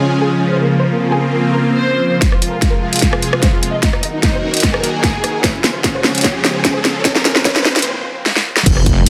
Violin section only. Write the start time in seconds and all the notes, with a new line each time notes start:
0.00 C#4
0.11 C#4
0.20 G#4
0.31 C#4
0.40 C#4
0.51 C5
0.61 A#3
0.71 A#3
0.81 C5
0.91 A#3
1.01 A#3
1.11 G#4
1.21 A#3
1.32 A#3
1.41 A#3
1.52 A#4
1.61 A#3
1.72 C5
2.22 C5
2.32 F4
2.42 F4
2.52 A#4
2.62 F4
2.72 A#4
2.82 F4
2.93 F4
3.02 F4
3.13 G#4
3.23 F4
3.33 F4
3.42 C5
3.53 F4
3.63 F4
3.73 D#5
3.83 D#4
3.93 D#4
4.03 D#5
4.13 D#4
4.23 D#4
4.34 C5
4.43 D#4
4.54 D#4
4.64 D#4
4.74 G#4
4.84 D#4
4.94 G#4
5.44 C#5
5.55 C#4
5.64 C#4
5.75 C5
5.84 C#4
5.95 C5
6.04 C#4
6.15 C#4
6.24 C#5
6.35 C#4
6.44 C#4
6.55 C5
6.65 C#4
6.75 C5
6.85 C#4
6.95 C#4
7.05 C#5
7.15 C#4
7.25 C#4
7.36 C5
7.45 C#5
7.56 C#4
7.65 C#4
7.76 C5